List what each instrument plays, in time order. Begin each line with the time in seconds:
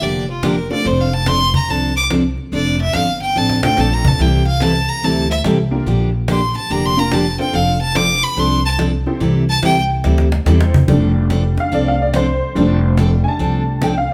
0.01 upright bass F1, steel-string acoustic guitar D3 F3 A#3 D4 G4, fiddle D5, cajon slap
0.30 fiddle F4
0.43 steel-string acoustic guitar D3 F3 A#3 D4 G4, fiddle A#4, cajon slap
0.70 honky-tonk piano A3 C4 D4 F4 A4, fiddle D5, cajon slap
0.85 upright bass F1, steel-string acoustic guitar F3 C4 D4 A4, fiddle C5, cajon slap
1.01 fiddle F5
1.14 fiddle A5
1.26 steel-string acoustic guitar F3 C4 D4 A4, fiddle C6, cajon slap
1.54 fiddle A#5, cajon bass
1.68 upright bass C2, steel-string acoustic guitar F3 C4 D4 A4, fiddle A5, cajon slap
1.96 fiddle D6
2.10 steel-string acoustic guitar F3 C4 D4 A4, cajon slap
2.38 cajon slap
2.52 upright bass F1, steel-string acoustic guitar F3 C4 D4 A4, fiddle D5, cajon slap
2.81 fiddle E5
2.93 upright bass G1, steel-string acoustic guitar F3 C4 D4 A4, fiddle F5, cajon slap
3.21 fiddle G5, cajon slap
3.35 upright bass A1, steel-string acoustic guitar F3 C4 D4 A4, fiddle A5
3.49 cajon slap
3.63 honky-tonk piano A3 C4 D4 F4 A4, fiddle G5, cajon slap
3.77 upright bass A#1, steel-string acoustic guitar F3 C4 D4 A4, fiddle A5, cajon slap
3.93 fiddle A#5
4.05 fiddle A5, cajon bass
4.19 upright bass C2, steel-string acoustic guitar C3 E3 G3 C4 E4 A4, fiddle G5
4.47 fiddle F5
4.60 steel-string acoustic guitar C3 E3 G3 C4 E4 A4, fiddle A5, cajon slap
4.89 fiddle A#5
5.02 upright bass D2, steel-string acoustic guitar C3 E3 G3 C4 E4 A4, fiddle A5, cajon slap
5.31 fiddle E5
5.44 upright bass C2, steel-string acoustic guitar C3 E3 G3 C4 E4 A4, cajon slap
5.71 honky-tonk piano A#3 D4 F4 G4 A#4
5.86 upright bass A#1, steel-string acoustic guitar D3 F3 A#3 D4 G4, cajon slap
6.28 steel-string acoustic guitar D3 F3 A#3 D4 G4, fiddle C6, cajon slap
6.55 fiddle A5, cajon slap
6.70 upright bass F1, steel-string acoustic guitar D3 F3 A#3 D4 G4, fiddle A#5, cajon slap
6.86 fiddle C6
6.97 honky-tonk piano A#3 D4 F4 G4 A#4, fiddle A#5
7.11 steel-string acoustic guitar D3 F3 A#3 D4 G4, fiddle A5, cajon slap
7.39 honky-tonk piano C4 D4 F4 A4 C5, fiddle G5, cajon slap
7.53 upright bass F1, steel-string acoustic guitar F3 C4 D4 A4, fiddle F5, cajon slap
7.81 fiddle A5
7.95 steel-string acoustic guitar F3 C4 D4 A4, honky-tonk piano C4 D4 F4 A4 C5, fiddle D6, cajon slap
8.23 fiddle B5, cajon slap
8.37 upright bass C2, steel-string acoustic guitar F3 C4 D4 A4, fiddle C6, cajon slap
8.65 fiddle A5
8.78 steel-string acoustic guitar F3 C4 D4 A4, cajon slap
9.06 honky-tonk piano C4 E4 G4 A4 C5, cajon slap
9.20 upright bass C2, steel-string acoustic guitar C3 E3 G3 C4 E4 A4, cajon slap
9.49 fiddle A5
9.62 upright bass C2, steel-string acoustic guitar C3 E3 G3 C4 E4 A4, fiddle G5, cajon slap
9.90 cajon slap
10.04 upright bass D2, steel-string acoustic guitar C3 E3 G3 C4 E4 A4, cajon slap
10.18 cajon slap
10.32 cajon slap
10.46 upright bass E2, steel-string acoustic guitar C3 E3 G3 C4 E4 A4, honky-tonk piano C4 E4 G4 A4 C5, cajon slap
10.61 cajon slap
10.74 cajon bass
10.88 upright bass F1, steel-string acoustic guitar F3 C4 D4 A4, honky-tonk piano G3 A3 D4, cajon bass
11.30 steel-string acoustic guitar F3 C4 D4 A4, cajon slap
11.58 honky-tonk piano F5, cajon slap
11.72 upright bass C2, steel-string acoustic guitar F3 C4 D4 A4, honky-tonk piano D5, cajon slap
11.88 honky-tonk piano F5
12.02 honky-tonk piano D5
12.14 steel-string acoustic guitar F3 C4 D4 A4, honky-tonk piano C5, cajon slap
12.55 upright bass F1, steel-string acoustic guitar F3 C4 D4 A4, honky-tonk piano G3 A3 D4, cajon slap
12.97 steel-string acoustic guitar F3 C4 D4 A4, cajon slap
13.24 honky-tonk piano G#5, cajon slap
13.28 honky-tonk piano A5
13.39 upright bass C2, steel-string acoustic guitar F3 C4 D4 A4, cajon slap
13.82 steel-string acoustic guitar F3 C4 D4 A4, honky-tonk piano G5, cajon slap
13.98 honky-tonk piano F5
14.09 cajon slap